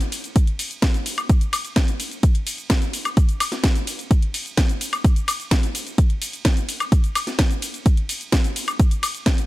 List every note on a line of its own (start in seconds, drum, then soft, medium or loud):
0.01 closed hi-hat soft
0.01 shaker soft
0.12 open hi-hat loud
0.12 ride medium
0.12 shaker medium
0.24 closed hi-hat soft
0.24 shaker soft
0.36 kick loud
0.36 closed hi-hat medium
0.36 shaker soft
0.47 closed hi-hat soft
0.59 open hi-hat loud
0.59 ride medium
0.59 shaker medium
0.71 closed hi-hat soft
0.71 shaker soft
0.82 kick loud
0.82 snare loud
0.82 closed hi-hat medium
0.82 shaker soft
0.94 closed hi-hat soft
0.94 shaker soft
1.06 open hi-hat loud
1.06 ride medium
1.06 shaker medium
1.18 closed hi-hat soft
1.18 high woodblock medium
1.18 shaker soft
1.29 kick loud
1.29 closed hi-hat medium
1.29 shaker soft
1.41 closed hi-hat soft
1.41 shaker soft
1.53 open hi-hat loud
1.53 ride medium
1.53 high woodblock medium
1.53 shaker medium
1.65 closed hi-hat soft
1.65 shaker soft
1.76 kick loud
1.76 snare loud
1.76 closed hi-hat medium
1.76 shaker soft
1.88 closed hi-hat soft
1.88 shaker soft
2.00 open hi-hat loud
2.00 ride medium
2.00 shaker medium
2.11 closed hi-hat soft
2.11 shaker soft
2.23 kick loud
2.23 closed hi-hat medium
2.23 shaker soft
2.35 closed hi-hat soft
2.47 open hi-hat loud
2.47 ride medium
2.47 shaker medium
2.58 closed hi-hat soft
2.58 shaker soft
2.70 kick loud
2.70 snare loud
2.70 closed hi-hat medium
2.70 shaker soft
2.82 closed hi-hat soft
2.82 shaker soft
2.93 open hi-hat loud
2.93 ride medium
2.93 shaker medium
3.05 closed hi-hat soft
3.05 high woodblock medium
3.05 shaker soft
3.17 kick loud
3.17 closed hi-hat medium
3.17 shaker soft
3.29 closed hi-hat soft
3.29 shaker soft
3.40 open hi-hat loud
3.40 ride medium
3.40 high woodblock medium
3.40 shaker medium
3.52 snare soft
3.52 closed hi-hat soft
3.52 shaker soft
3.64 kick loud
3.64 snare loud
3.64 closed hi-hat medium
3.64 shaker soft
3.75 closed hi-hat soft
3.75 shaker soft
3.87 open hi-hat loud
3.87 ride medium
3.87 shaker medium
3.99 closed hi-hat soft
3.99 shaker soft
4.11 kick loud
4.11 closed hi-hat medium
4.11 shaker soft
4.22 closed hi-hat soft
4.34 open hi-hat loud
4.34 ride medium
4.34 shaker medium
4.46 closed hi-hat soft
4.46 shaker soft
4.57 kick loud
4.57 snare loud
4.57 closed hi-hat medium
4.57 shaker soft
4.69 closed hi-hat soft
4.69 shaker soft
4.81 open hi-hat loud
4.81 ride medium
4.81 shaker medium
4.93 closed hi-hat soft
4.93 high woodblock medium
4.93 shaker soft
5.04 kick loud
5.04 closed hi-hat medium
5.04 shaker soft
5.16 closed hi-hat soft
5.16 shaker soft
5.28 open hi-hat loud
5.28 ride medium
5.28 high woodblock medium
5.28 shaker medium
5.40 closed hi-hat soft
5.40 shaker soft
5.51 kick loud
5.51 snare loud
5.51 closed hi-hat medium
5.51 shaker soft
5.63 closed hi-hat soft
5.63 shaker soft
5.75 open hi-hat loud
5.75 ride medium
5.75 shaker medium
5.87 closed hi-hat soft
5.87 shaker soft
5.98 kick loud
5.98 closed hi-hat medium
5.98 shaker soft
6.10 closed hi-hat soft
6.22 open hi-hat loud
6.22 ride medium
6.22 shaker medium
6.33 closed hi-hat soft
6.33 shaker soft
6.45 kick loud
6.45 snare loud
6.45 closed hi-hat medium
6.45 shaker soft
6.57 closed hi-hat soft
6.57 shaker soft
6.69 open hi-hat loud
6.69 ride medium
6.69 shaker medium
6.80 closed hi-hat soft
6.80 high woodblock medium
6.80 shaker soft
6.92 kick loud
6.92 closed hi-hat medium
6.92 shaker soft
7.04 closed hi-hat soft
7.04 shaker soft
7.15 open hi-hat loud
7.15 ride medium
7.15 high woodblock medium
7.15 shaker medium
7.27 snare soft
7.27 closed hi-hat soft
7.27 shaker soft
7.39 kick loud
7.39 snare loud
7.39 closed hi-hat medium
7.39 shaker soft
7.51 closed hi-hat soft
7.51 shaker soft
7.62 open hi-hat loud
7.62 ride medium
7.62 shaker medium
7.74 closed hi-hat soft
7.74 shaker soft
7.86 kick loud
7.86 closed hi-hat medium
7.86 shaker soft
7.97 closed hi-hat soft
8.09 open hi-hat loud
8.09 ride medium
8.09 shaker medium
8.21 closed hi-hat soft
8.21 shaker soft
8.32 kick loud
8.32 snare loud
8.32 closed hi-hat medium
8.32 shaker soft
8.44 closed hi-hat soft
8.44 shaker soft
8.56 open hi-hat loud
8.56 ride medium
8.56 shaker medium
8.68 closed hi-hat soft
8.68 high woodblock medium
8.68 shaker soft
8.79 kick loud
8.79 closed hi-hat medium
8.79 shaker soft
8.91 closed hi-hat soft
8.91 shaker soft
9.03 open hi-hat loud
9.03 ride medium
9.03 high woodblock medium
9.03 shaker medium
9.15 closed hi-hat soft
9.15 shaker soft
9.26 kick loud
9.26 snare loud
9.26 closed hi-hat medium
9.26 shaker soft
9.38 closed hi-hat soft
9.38 shaker soft